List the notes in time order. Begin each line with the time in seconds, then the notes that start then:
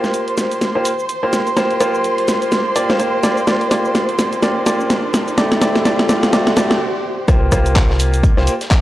Already playing: A#3 F4 G4 C5 C6, riser
0.04 snare, shaker
0.14 closed hi-hat, shaker
0.28 closed hi-hat
0.38 snare, open hi-hat, shaker
0.52 closed hi-hat, shaker
0.62 snare, closed hi-hat, shaker
0.75 A#3 F4 G4 C5
0.85 open hi-hat, shaker
0.99 shaker
1.09 closed hi-hat, shaker
1.23 A#3 F4 G4 C5
1.33 snare, open hi-hat, shaker
1.47 closed hi-hat, shaker
1.57 A#3 F4 G4 C5, cross-stick, snare, closed hi-hat, shaker
1.71 closed hi-hat
1.81 A#3 F4 G4 C5, cross-stick, open hi-hat, shaker
1.94 shaker
2.04 closed hi-hat, shaker
2.18 closed hi-hat
2.28 snare, open hi-hat, shaker
2.42 closed hi-hat, shaker
2.52 snare, closed hi-hat, shaker
2.76 A#3 F4 G4 D5, open hi-hat, shaker
2.90 A#3 F4 G4 C5, snare, shaker
3.00 A#3 F4 G4 C5, closed hi-hat, shaker
3.23 A#3 F4 G4 D5, snare, open hi-hat, shaker
3.37 closed hi-hat, shaker
3.47 A#3 F4 G4 D5, snare, closed hi-hat, shaker
3.61 closed hi-hat
3.71 A#3 F4 G4 D5, snare, open hi-hat, shaker
3.85 shaker
3.95 snare, closed hi-hat, shaker
4.09 closed hi-hat
4.19 snare, open hi-hat, shaker
4.33 closed hi-hat, shaker
4.42 A#3 F4 G4 D5, snare, closed hi-hat, shaker
4.66 A#3 F4 G4 D5, snare, open hi-hat, shaker
4.80 shaker
4.90 snare, closed hi-hat, shaker
5.14 snare, open hi-hat, shaker
5.28 closed hi-hat, shaker
5.38 A3 E4 G4 D5, snare, closed hi-hat, shaker
5.52 snare, closed hi-hat, shaker
5.61 A3 E4 G4 D5, snare, open hi-hat, shaker
5.75 snare, shaker
5.85 A3 E4 G4 D5, snare, closed hi-hat, shaker
5.99 snare, closed hi-hat
6.09 A3 E4 G4 D5, snare, open hi-hat, shaker
6.23 snare, closed hi-hat, shaker
6.33 A3 E4 G4 D5, snare, closed hi-hat, shaker
6.47 snare, shaker
6.57 A3 E4 G4 D5, snare, open hi-hat, shaker
6.71 snare, shaker
7.28 C2 A#3 F4 G4 C5, kick, cross-stick, closed hi-hat, shaker
7.52 C2 A#3 F4 G4 C5, kick, cross-stick, closed hi-hat, open hi-hat, shaker
7.66 closed hi-hat, shaker
7.76 kick, snare, clap, closed hi-hat, shaker
7.90 snare
7.99 closed hi-hat, open hi-hat, shaker
8.14 closed hi-hat, shaker
8.23 kick, closed hi-hat, shaker
8.37 C2 A#3 F4 G4 C5, snare
8.47 closed hi-hat, open hi-hat, shaker
8.61 snare, closed hi-hat, shaker
8.71 kick, snare, clap, closed hi-hat, shaker